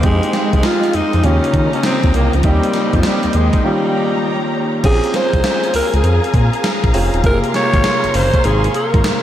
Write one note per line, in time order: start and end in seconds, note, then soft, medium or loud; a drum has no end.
0.00 0.20 F2 loud
0.00 1.21 G#3 medium
0.00 1.21 C4 medium
0.00 1.21 D#4 medium
0.00 1.20 C5 medium
0.00 1.23 D#5 medium
0.00 1.23 F5 medium
0.00 kick loud
0.00 closed hi-hat medium
0.04 0.51 G#3 loud
0.04 2.42 D#4 medium
0.04 1.22 G4 medium
0.23 closed hi-hat medium
0.33 snare medium
0.33 closed hi-hat medium
0.53 0.62 C2 medium
0.53 0.67 G#3 medium
0.53 kick medium
0.53 closed hi-hat medium
0.63 0.97 F4 loud
0.63 snare loud
0.63 closed hi-hat medium
0.83 closed hi-hat medium
0.93 1.02 F2 soft
0.93 1.27 D#4 loud
0.93 closed hi-hat medium
1.13 1.22 F2 medium
1.13 closed hi-hat soft
1.23 1.40 D#2 loud
1.23 2.41 C#3 medium
1.23 2.41 A#3 medium
1.23 1.74 C#4 loud
1.23 2.42 F4 medium
1.23 2.42 G4 medium
1.23 2.43 D#5 medium
1.23 3.61 G5 medium
1.23 2.43 A#5 medium
1.23 closed hi-hat medium
1.44 closed hi-hat medium
1.54 1.70 D#3 loud
1.54 kick medium
1.54 closed hi-hat medium
1.73 1.84 C#4 medium
1.73 closed hi-hat soft
1.83 2.13 C4 loud
1.83 snare medium
1.83 closed hi-hat medium
2.03 2.12 D#2 medium
2.03 kick medium
2.03 closed hi-hat soft
2.14 2.30 C2 medium
2.14 2.37 A#3 medium
2.14 closed hi-hat medium
2.33 2.42 C#2 medium
2.33 2.47 F3 medium
2.33 closed hi-hat soft
2.43 2.60 D#2 loud
2.43 2.97 G3 loud
2.43 3.61 A#3 medium
2.43 3.61 C4 medium
2.43 4.82 D#4 medium
2.43 3.62 D#4 medium
2.43 3.62 G4 medium
2.43 3.63 C5 medium
2.43 3.63 D#5 medium
2.43 kick loud
2.43 closed hi-hat medium
2.63 closed hi-hat medium
2.74 snare medium
2.74 closed hi-hat medium
2.93 3.02 F2 loud
2.93 3.08 F3 medium
2.93 kick medium
2.93 closed hi-hat medium
3.03 3.37 G3 medium
3.03 snare loud
3.03 closed hi-hat medium
3.23 3.28 D#2 soft
3.23 closed hi-hat medium
3.33 3.50 D#2 medium
3.33 3.65 G#3 medium
3.33 closed hi-hat medium
3.53 kick medium
3.53 closed hi-hat soft
3.63 4.81 D#3 medium
3.63 4.50 G3 medium
3.63 4.82 A#3 medium
3.63 4.82 C#4 medium
3.63 4.82 F4 medium
3.63 4.82 G4 medium
3.63 4.83 C#5 medium
3.63 4.83 G5 medium
3.63 4.83 A#5 medium
4.83 5.00 A#1 loud
4.83 6.90 C4 medium
4.83 6.90 C#4 medium
4.83 6.90 F4 medium
4.83 9.22 G#4 medium
4.83 5.17 G#4 loud
4.83 6.91 G#4 medium
4.83 9.22 F5 medium
4.83 7.22 G#5 medium
4.83 9.22 A#5 medium
4.83 kick loud
4.83 closed hi-hat medium
4.83 crash loud
5.04 closed hi-hat medium
5.14 5.75 C5 loud
5.14 snare medium
5.14 closed hi-hat medium
5.33 5.42 C2 medium
5.33 kick medium
5.33 closed hi-hat medium
5.44 snare loud
5.44 closed hi-hat medium
5.64 closed hi-hat medium
5.74 5.82 C#2 soft
5.74 5.93 A#4 loud
5.74 open hi-hat medium
5.94 6.02 C#2 medium
5.94 6.51 G#4 medium
5.94 closed hi-hat medium
6.04 6.20 F2 loud
6.04 closed hi-hat medium
6.24 closed hi-hat medium
6.34 6.50 A#2 medium
6.34 kick medium
6.34 closed hi-hat medium
6.53 closed hi-hat soft
6.64 snare medium
6.64 closed hi-hat medium
6.84 6.92 A#1 loud
6.84 kick medium
6.84 closed hi-hat soft
6.93 7.10 F1 loud
6.93 7.24 C4 medium
6.93 7.24 C#4 medium
6.93 7.24 F4 medium
6.93 7.24 G#4 medium
6.93 open hi-hat medium
7.14 7.22 D#1 loud
7.14 closed hi-hat soft
7.23 7.40 F#1 loud
7.23 9.22 C3 medium
7.23 9.22 A#3 medium
7.23 9.22 F4 medium
7.23 9.22 G#4 medium
7.23 7.39 A#4 loud
7.23 9.22 C6 medium
7.23 kick loud
7.23 closed hi-hat medium
7.44 closed hi-hat medium
7.54 8.17 C#5 loud
7.54 snare medium
7.54 closed hi-hat medium
7.73 7.82 G#1 medium
7.73 kick medium
7.73 closed hi-hat medium
7.84 snare loud
7.84 closed hi-hat medium
8.04 8.08 F#1 soft
8.04 closed hi-hat medium
8.14 8.30 F#1 medium
8.14 8.47 C5 loud
8.14 open hi-hat medium
8.34 kick medium
8.34 closed hi-hat medium
8.44 8.68 G#1 loud
8.44 8.75 G#4 medium
8.44 closed hi-hat medium
8.64 closed hi-hat medium
8.74 9.22 A#4 medium
8.74 closed hi-hat medium
8.94 9.02 G#1 loud
8.94 kick loud
8.94 closed hi-hat soft
9.04 9.12 G#1 soft
9.04 snare loud
9.04 closed hi-hat medium